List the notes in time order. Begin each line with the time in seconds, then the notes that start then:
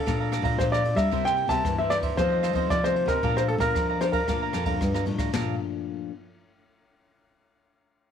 Already playing: A4
0.06 A#2 F3 A3 D4 A4 D5 F5 A#5, kick, cross-stick, ride
0.20 D5 F5 A#5
0.32 A4 D5 F5 A#5, cross-stick, ride
0.42 A#2 F3 A3 D4 D5 F5 A#5, kick, ride
0.59 F2 A#2 C5, kick, cross-stick, ride
0.72 D5 F5 A#5, cross-stick
0.84 F3 A3 D4, muted cavaquinho stroke, ride
0.95 G3 D5 E5 F5 A#5, kick, cross-stick, ride
1.11 C3 G3 A#3 E4 A#4 C5 E5, kick, ride
1.25 A#4 C5 E5 G5, cross-stick
1.37 muted cavaquinho stroke, ride
1.48 C3 G3 A#3 E4 A#4 C5 E5 A5, kick, cross-stick, ride
1.65 G2 E3, kick, cross-stick, ride
1.78 G3 A#3 E4 A#4 C5 E5
1.90 E4 A#4 C5 D5 E5, cross-stick, ride
2.02 A#4 C5 E5, kick, ride
2.17 F2 D#3 F3 A3 C4 F4 A4 C5 D#5, kick, cross-stick, ride
2.32 A4 C5 D#5
2.43 F4 A4 C5 D#5, cross-stick, ride
2.53 D#3 F3 A3 C4 A4 C5 D#5, kick, ride
2.70 C3 F3 D5, kick, cross-stick, ride
2.84 D#3 A3 C4 A4 C5 D#5, cross-stick
2.96 muted cavaquinho stroke, ride
3.06 C3 A4 A#4 C5 D#5, kick, cross-stick, ride
3.23 A#2 F3 A3 D4 A4 D5 F5 A#5, kick, ride
3.36 C5 D5 F5 A#5, cross-stick
3.48 A4, muted cavaquinho stroke, ride
3.58 A#2 F3 A#4 D5 F5 A#5, kick, cross-stick, ride
3.75 F2 F3, kick, cross-stick, ride
3.90 D5 F5 A#5
4.01 F3 A3 D4 A4 C5 D5 F5 A#5, cross-stick, ride
4.12 A#4 D5 F5 A#5, kick, ride
4.28 A#2 F3 A3 A#3 D4 A4 D5 F5 A#5, kick, cross-stick, ride
4.42 D5 F5 A#5
4.53 F2 A4 D5 F5 A#5, cross-stick, ride
4.66 F3 A3 D4 D5 F5 A#5, kick, ride
4.81 F2 G2, kick, cross-stick, ride
4.94 D5 F5 A#5, cross-stick
5.06 A2 F3 A3 D4, muted cavaquinho stroke, ride
5.18 D5 F5 A#5, kick, cross-stick, ride
5.33 A#2 F3 A3 D4 A4 D5 F5 A#5, snare, floor tom, china